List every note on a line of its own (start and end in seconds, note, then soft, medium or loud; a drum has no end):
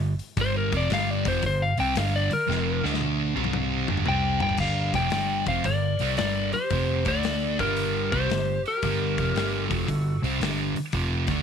0.00 0.19 G1 medium
0.00 0.13 G2 medium
0.00 0.13 D3 medium
0.19 open hi-hat medium
0.37 0.70 G1 medium
0.37 0.72 G2 loud
0.37 0.72 D3 medium
0.37 0.73 G3 loud
0.37 kick loud
0.37 open hi-hat medium
0.41 0.57 C5 loud
0.57 0.74 A#4 medium
0.72 0.89 F1 loud
0.72 0.90 F2 medium
0.72 0.91 C3 loud
0.72 0.91 F3 loud
0.72 kick loud
0.72 open hi-hat medium
0.77 0.92 D5 medium
0.90 1.24 G1 loud
0.90 1.25 G2 medium
0.90 1.26 D3 medium
0.90 1.26 G3 loud
0.90 1.11 F5 medium
0.90 snare loud
0.90 open hi-hat medium
1.11 1.27 D5 medium
1.25 1.42 F1 loud
1.25 1.43 F2 medium
1.25 1.44 C3 medium
1.25 1.44 F3 loud
1.25 1.44 C5 medium
1.25 kick loud
1.25 open hi-hat medium
1.42 1.76 G1 medium
1.42 1.72 G2 medium
1.42 1.72 D3 medium
1.42 1.62 C5 medium
1.42 kick medium
1.42 open hi-hat medium
1.62 1.79 F5 medium
1.78 1.96 C2 medium
1.78 1.95 C3 medium
1.78 1.96 G3 medium
1.78 1.96 C4 loud
1.78 1.97 G5 medium
1.78 open hi-hat medium
1.95 2.29 G1 loud
1.95 2.30 G2 loud
1.95 2.31 D3 loud
1.95 2.31 G3 loud
1.95 2.14 F5 loud
1.95 snare loud
1.95 open hi-hat medium
2.16 2.32 D5 medium
2.31 2.84 A#4 loud
2.31 muted distorted electric guitar stroke medium
2.31 muted picked electric bass stroke soft
2.31 open hi-hat medium
2.47 2.82 F1 loud
2.47 2.82 F2 medium
2.47 2.82 C3 loud
2.47 2.83 F3 loud
2.47 snare medium
2.83 3.33 D2 medium
2.83 3.34 D3 loud
2.83 3.35 A3 loud
2.83 3.35 D4 medium
2.83 snare medium
2.94 snare medium
3.01 high tom medium
3.35 3.85 C2 medium
3.35 3.88 C3 medium
3.35 3.88 G3 medium
3.35 3.88 C4 loud
3.35 high tom medium
3.44 mid tom medium
3.53 mid tom medium
3.88 4.06 G1 medium
3.88 4.06 G2 medium
3.88 4.06 D3 medium
3.88 4.06 G3 medium
3.88 mid tom medium
3.97 mid tom medium
4.06 4.40 C2 medium
4.06 4.41 C3 loud
4.06 4.41 G3 loud
4.06 4.42 C4 loud
4.06 4.41 D5 medium
4.06 4.41 G5 loud
4.06 mid tom loud
4.40 4.59 G1 medium
4.40 4.59 G2 medium
4.40 4.60 D3 medium
4.40 4.60 G3 loud
4.40 4.60 D5 medium
4.40 4.60 G5 loud
4.40 floor tom loud
4.49 floor tom medium
4.57 4.92 G1 medium
4.57 4.94 G2 medium
4.57 4.95 D3 medium
4.57 4.95 F5 medium
4.57 kick loud
4.57 crash loud
4.61 4.95 G3 loud
4.61 4.94 A#4 medium
4.94 5.11 F1 medium
4.94 5.12 F2 medium
4.94 5.12 C3 medium
4.94 5.12 F3 medium
4.94 5.45 D5 medium
4.94 5.44 G5 loud
4.94 kick loud
4.94 snare soft
4.94 open hi-hat medium
5.10 5.45 G1 medium
5.10 5.47 G2 medium
5.10 5.47 D3 medium
5.10 5.47 G3 loud
5.10 snare loud
5.10 open hi-hat medium
5.46 5.64 F1 medium
5.46 5.65 F2 medium
5.46 5.65 C3 medium
5.46 5.66 F3 loud
5.46 5.64 C5 medium
5.46 5.66 F5 medium
5.46 kick loud
5.46 open hi-hat medium
5.64 5.98 G1 medium
5.64 5.94 G2 medium
5.64 5.94 D3 medium
5.64 6.15 A#4 medium
5.64 6.15 D5 medium
5.64 kick medium
5.64 open hi-hat medium
5.99 6.17 C2 medium
5.99 6.17 C3 medium
5.99 6.18 G3 medium
5.99 6.18 C4 medium
5.99 open hi-hat medium
6.17 6.52 G1 medium
6.17 6.52 G2 loud
6.17 6.53 D3 medium
6.17 6.53 G3 loud
6.17 6.51 A#4 medium
6.17 6.53 D5 medium
6.17 snare loud
6.17 open hi-hat medium
6.52 7.02 G4 medium
6.52 7.08 C5 medium
6.52 muted picked electric bass stroke soft
6.52 muted distorted electric guitar stroke medium
6.52 open hi-hat medium
6.70 7.04 F1 medium
6.70 7.06 F2 medium
6.70 7.05 C3 loud
6.70 7.06 F3 medium
6.70 kick loud
6.70 open hi-hat medium
7.05 7.55 D2 medium
7.05 7.58 D3 medium
7.05 7.58 A3 loud
7.05 7.59 D4 medium
7.05 7.56 A4 medium
7.05 7.62 D5 medium
7.05 kick medium
7.05 open hi-hat medium
7.23 snare loud
7.23 open hi-hat medium
7.59 8.09 G1 medium
7.59 8.11 G2 medium
7.59 8.11 D3 medium
7.59 8.12 G3 medium
7.59 8.09 G4 medium
7.59 8.14 A#4 medium
7.59 kick loud
7.59 open hi-hat medium
7.77 open hi-hat medium
8.12 8.29 C2 medium
8.12 8.30 C3 medium
8.12 8.30 G3 medium
8.12 8.31 C4 medium
8.12 8.62 G4 medium
8.12 8.61 C5 medium
8.12 kick loud
8.12 open hi-hat soft
8.30 8.63 G1 medium
8.30 8.58 G2 medium
8.30 8.59 D3 medium
8.30 snare loud
8.30 open hi-hat medium
8.66 9.65 G4 medium
8.66 9.67 A#4 medium
8.66 open hi-hat medium
8.82 9.16 G1 medium
8.82 9.17 G2 medium
8.82 9.18 D3 medium
8.82 9.18 G3 loud
8.82 kick loud
8.82 open hi-hat medium
9.18 9.35 F1 medium
9.18 9.36 F2 medium
9.18 9.36 C3 medium
9.18 9.36 F3 medium
9.18 kick medium
9.18 open hi-hat soft
9.35 9.68 G1 loud
9.35 9.70 G2 medium
9.35 9.70 D3 medium
9.35 9.71 G3 medium
9.35 snare loud
9.35 open hi-hat medium
9.65 10.20 F#4 medium
9.65 10.21 A4 medium
9.70 9.87 F1 medium
9.70 9.88 F2 medium
9.70 9.88 C3 medium
9.70 9.88 F3 loud
9.70 kick loud
9.70 open hi-hat medium
9.88 10.21 G1 medium
9.88 10.16 G2 medium
9.88 10.16 D3 medium
9.88 kick medium
9.88 open hi-hat medium
10.22 10.39 C2 medium
10.22 10.40 C3 medium
10.22 10.40 G3 medium
10.22 10.41 C4 medium
10.22 open hi-hat medium
10.40 10.73 G1 medium
10.40 10.75 G2 medium
10.40 10.75 D3 loud
10.40 10.76 G3 medium
10.40 snare loud
10.40 open hi-hat medium
10.75 muted picked electric bass stroke soft
10.75 muted distorted electric guitar stroke medium
10.75 open hi-hat medium
10.92 11.26 F1 medium
10.92 11.28 F2 medium
10.92 11.28 C3 medium
10.92 11.28 F3 loud
10.92 kick medium
10.92 open hi-hat medium
11.27 11.42 D2 medium
11.27 11.42 D3 medium
11.27 11.42 A3 loud
11.27 11.42 D4 loud
11.27 kick loud
11.27 snare soft
11.27 open hi-hat medium